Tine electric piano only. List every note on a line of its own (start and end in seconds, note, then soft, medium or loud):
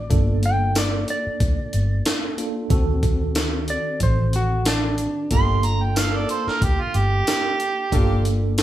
0.10 2.34 A#3 medium
0.10 2.34 D4 medium
0.10 2.34 F4 medium
0.10 2.35 A4 medium
2.38 2.71 A#3 medium
2.38 2.71 D4 soft
2.38 2.71 F4 soft
2.38 2.70 A4 medium
2.70 5.27 D#3 medium
2.70 5.27 C4 medium
2.70 5.28 F#4 medium
2.70 5.28 A4 medium
5.31 7.88 A#3 medium
5.31 7.88 D4 medium
5.31 7.88 F4 medium
5.31 7.88 A4 medium
7.92 8.63 A#3 medium
7.92 8.63 D4 medium
7.92 8.63 F4 medium
7.92 8.63 A4 medium